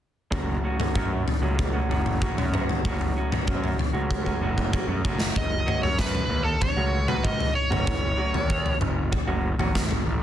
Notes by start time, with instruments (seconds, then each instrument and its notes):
0.31 picked electric bass F#1, clean electric guitar F#2 C#3 F#3 A3 C#4 F#4, kick, floor tom
0.63 clean electric guitar F#3 A3 C#4 F#4
0.79 clean electric guitar F#3 A3 C#4 F#4, floor tom, mid tom
0.95 clean electric guitar F#2 C#3 F#3 A3 C#4 F#4, picked electric bass F#2, kick, mid tom
1.10 clean electric guitar F#3 A3 C#4 F#4
1.26 muted clean electric guitar stroke, floor tom
1.42 picked electric bass C#2, clean electric guitar F#3 A3 C#4 F#4
1.59 kick, floor tom
1.73 clean electric guitar F#3 A3 C#4 F#4
1.89 picked electric bass F#1, clean electric guitar F#3 A3 C#4 F#4, floor tom
2.06 floor tom
2.21 clean electric guitar F#2 C#3 F#3 A3 C#4 F#4, kick
2.37 picked electric bass F#2, clean electric guitar F#3 A3 C#4 F#4, floor tom
2.52 clean electric guitar F#3 A3 C#4 F#4, mid tom
2.69 floor tom
2.85 picked electric bass F#1, clean electric guitar C#3 F#3 A3 C#4 F#4, kick, floor tom
3.01 floor tom
3.15 clean electric guitar F#3 A3 C#4 F#4
3.31 clean electric guitar F#3 A3 C#4 F#4, floor tom, mid tom
3.47 clean electric guitar F#2 C#3 F#3 A3 C#4 F#4, picked electric bass F#2, kick, mid tom
3.62 clean electric guitar F#3 A3 C#4 F#4, floor tom
3.78 muted clean electric guitar stroke, floor tom
3.93 picked electric bass C#2, clean electric guitar F#3 A3 C#4 F#4
4.11 kick
4.25 clean electric guitar F#3 A3 C#4 F#4, kick
4.41 picked electric bass F#1, clean electric guitar F#3 A3 C#4 F#4
4.58 kick
4.72 clean electric guitar F#2 C#3 F#3 A3 C#4 F#4, kick
4.88 picked electric bass F#2, clean electric guitar F#3 A3 C#4 F#4
5.04 picked electric bass F#1, clean electric guitar F#2 C#3 F#3 A3 C#4 F#4, kick
5.20 snare
5.36 picked electric bass F#1, lead electric guitar D#5, kick, floor tom
5.51 muted clean electric guitar stroke
5.66 clean electric guitar F#3 A3 C#4 F#4, mid tom
5.83 picked electric bass F#2, lead electric guitar C#5, floor tom
5.98 lead electric guitar B4, muted clean electric guitar stroke, kick, snare
6.15 floor tom
6.29 picked electric bass D#2
6.44 lead electric guitar A4
6.61 lead electric guitar C#5, muted clean electric guitar stroke, kick, floor tom
6.77 picked electric bass C#2, clean electric guitar F#3 A3 C#4 F#4
7.08 clean electric guitar F#3 A3 C#4 F#4, lead electric guitar B4, floor tom
7.24 picked electric bass C#2, lead electric guitar D#5, kick, mid tom
7.39 muted clean electric guitar stroke, floor tom
7.55 lead electric guitar C#5
7.70 picked electric bass F#1, clean electric guitar F#3 A3 C#4 F#4, mid tom
7.87 picked electric bass F#1, kick, floor tom
8.02 muted clean electric guitar stroke
8.17 clean electric guitar F#3 A3 C#4 F#4
8.34 picked electric bass D#2, floor tom
8.50 muted clean electric guitar stroke, kick
8.66 floor tom
8.81 picked electric bass F#1, mid tom
9.12 muted clean electric guitar stroke, kick, floor tom
9.27 picked electric bass F#1, clean electric guitar F#3 A3 C#4 F#4
9.58 picked electric bass G#1, clean electric guitar F#3 A3 C#4 F#4, floor tom
9.75 kick, snare, mid tom
9.91 muted clean electric guitar stroke, floor tom
10.06 picked electric bass A1